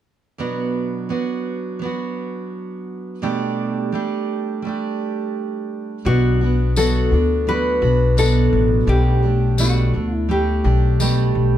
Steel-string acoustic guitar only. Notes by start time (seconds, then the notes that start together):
0.38 B2 F#3 B3 D4 F#4
1.09 F#3 B3 D4 F#4
1.79 F#3 B3
1.83 D4 F#4
3.22 B2 G3 A3 D4 G4
3.92 G3 A3 D4 G4
4.62 G3 A3
4.67 D4 G4
6.05 B2 F#3 B3 D4 F#4
6.41 B3 D4 F#4
6.76 B2 F#3 B3 D4 F#4
7.12 B3 D4 F#4
7.47 F#3 B3 D4 F#4
7.82 B3 D4 F#4
8.17 B2 F#3 B3 D4 F#4
8.87 B2 G3 A3 D4 G4
9.22 A3 D4 G4
9.58 B2 G3 A3 D4
9.95 A3 D4
10.29 G3 A3 D4 G4
10.64 A3 D4 G4
11.00 B2 G3 A3 D4 G4